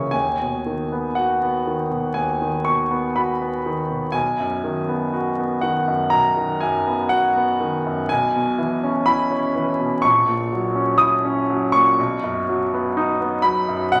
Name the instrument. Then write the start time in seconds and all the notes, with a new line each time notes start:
grand piano
Already playing: C#3 E3 A#3 F#4 C#5 D#5
0.11 D#2 G#5
0.41 B2
0.66 D#3
0.92 B3
1.15 F#4 F#5
1.42 B3
1.67 D#3
1.90 B2
2.14 D#2 G#5
2.42 D#3
2.65 B2 C#6
2.91 B3
3.16 F#4 B5
3.42 B3
3.66 D#3
3.90 B2
4.12 B1 G#5
4.40 F#2
4.64 D#3
4.89 B3
5.13 F#4
5.38 B3
5.61 D#3 F#5
5.88 F#2
6.10 B1 A#5
6.37 D#3
6.60 F#2 G#5
6.88 B3
7.09 F#4 F#5
7.36 B3
7.60 D#3
7.86 F#2
8.09 B1 G#5
8.36 B2
8.58 E3
8.84 C#4
9.06 E4 B5
9.31 C#4
9.55 E3
9.79 B2
10.02 A#1 C#6
10.28 A#2
10.52 F#3
10.75 C#4
10.98 E4 D#6
11.25 C#4
11.49 F#3
11.72 A#2 C#6
11.99 B1
12.24 F#2
12.49 F#3
12.74 B3
12.97 D#4
13.21 B3
13.42 F#3 B5
13.69 F#2
13.92 B1 F#5